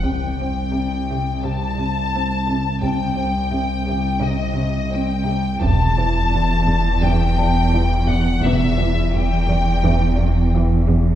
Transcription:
X:1
M:4/4
L:1/8
Q:1/4=86
K:Em
V:1 name="Celesta"
f'4- f' z3 | z8 | z4 z a3- | a3 z4 z |]
V:2 name="Violin section"
g4 a4 | g4 _e2 g2 | a4 g3 f | e2 g4 z2 |]
V:3 name="Cello section" clef=bass
C, C C, C, C, C, C C, | C, C C, C, C, C, C C, | E,, E, E,, E,, E,, E,, E, E,, | E,, E, E,, E,, E,, E,, E, E,, |]
V:4 name="Cello section" clef=bass
C,,8 | C,,8 | E,,8 | E,,8 |]
V:5 name="Double bass section" clef=bass
C,,2 z6 | C,,2 z6 | E,,,2 z6 | E,,,2 z6 |]
V:6 name="Sub bass" clef=bass
C,,8 | C,,8 | E,,,8 | E,,,8 |]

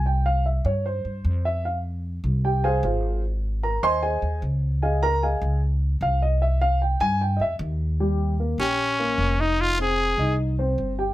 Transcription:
X:1
M:4/4
L:1/8
Q:1/4=151
K:Fm
V:1 name="Grand piano"
g f =e d c3 e | f z3 [Gg] [Acfa] [FAcf]2 | z2 [Bb] [ceac'] [Acea]2 z2 | [Aefa] [Bb] [Aefa]2 z2 f e |
=e f g a g [_e=e] z2 | [G,G]2 [B,B] [Gg]2 [B,B]2 [Ee]- | [Ee] [Cc]2 [Ee]2 [Cc]2 [Gg] |]
V:2 name="Trumpet"
z8 | z8 | z8 | z8 |
z8 | z3 D4 E | F A3 z4 |]
V:3 name="Upright bass" clef=bass
C,,3 G,,2 G,, F,,2- | F,,3 C,,3 A,,,2- | A,,,3 E,,2 E,, D,,2- | D,,3 D,,3 C,,2- |
C,,3 G,,2 F,, E,,2- | E,,3 B,,,3 F,,,2- | F,,,3 C,,3 G,,,2 |]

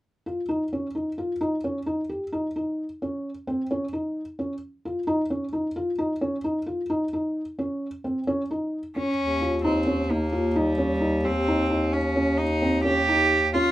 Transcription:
X:1
M:5/4
L:1/8
Q:1/4=131
K:Ebmix
V:1 name="Felt piano"
z F E D E F E D E G | E E2 D2 C D E2 D | z F E D E F E D E F | E E2 D2 C D E2 D |
z F E D E F E D E G | E E2 D2 C D E2 D |]
V:2 name="Cello"
z8 z2 | z8 z2 | z8 z2 | z8 z D- |
D2 C2 B,2 G,3 C- | C2 D2 E2 G3 F |]
V:3 name="Bass clarinet" clef=bass
z8 z2 | z8 z2 | z8 z2 | z8 z2 |
E,,8- E,,2- | E,,8- E,,2 |]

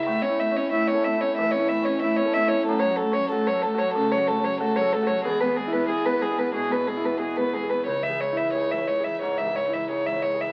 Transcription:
X:1
M:4/4
L:1/16
Q:1/4=92
K:A
V:1 name="Violin"
e c e c e c e c e c e c e c e c | A c A c A c A c A c A c A c A c | G B G B G B G B G B G B G B G B | c e c e c e c e c e c e c e c e |]
V:2 name="Grand piano"
(3A,,2 E2 C2 (3E2 A2 E2 (3E,2 E2 C2 (3E2 A2 E2 | (3F,,2 F2 C2 (3F2 A2 F2 (3C,2 F2 C2 (3F2 A2 F2 | (3E,,2 G2 E2 (3G2 B2 G2 (3B,,2 G2 E2 (3G2 B2 G2 | (3C,,2 G2 E2 (3G2 c2 G2 (3G,,2 G2 E2 (3G2 c2 G2 |]
V:3 name="Cello" clef=bass
A, C A, C A, C A, C A, C A, C A, C A, C | A, F, A, F, A, F, A, F, A, F, A, F, A, F, A, F, | G, B, G, B, G, B, G, B, G, B, G, B, G, B, G, B, | G, E, G, E, G, E, G, E, G, E, G, E, G, E, G, E, |]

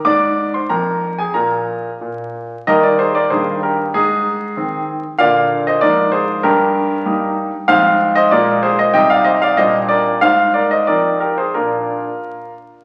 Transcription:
X:1
M:2/4
L:1/16
Q:1/4=94
K:Eb
V:1 name="Grand piano"
[dd']3 [cc'] [Bb]3 [Aa] | [Bb]6 z2 | [Be] [Bd] [Ac] [Bd] [Ac]2 [GB]2 | [EA]6 z2 |
[df]3 [ce] [Bd]2 [Ac]2 | [GB]6 z2 | [cf]3 [ce] [Bd]2 [Ac] [ce] | [eg] [df] [ce] [df] [ce]2 [Bd]2 |
[cf]2 [Bd] [ce] [Bd]2 [GB] [Ac] | [FB]6 z2 |]
V:2 name="Grand piano" clef=bass
A,,4 F,,4 | B,,4 B,,4 | [E,,G,B,E]4 [G,,E,B,E]4 | A,,4 [E,C]4 |
[B,,D,B,F]4 [A,,F,B,F]4 | G,,4 [G,B,E]4 | [A,,F,CF]4 [B,,A,B,F]4 | [C,G,E]4 [B,,G,B,D]4 |
A,,4 [F,CE]4 | [B,,B,D]4 z4 |]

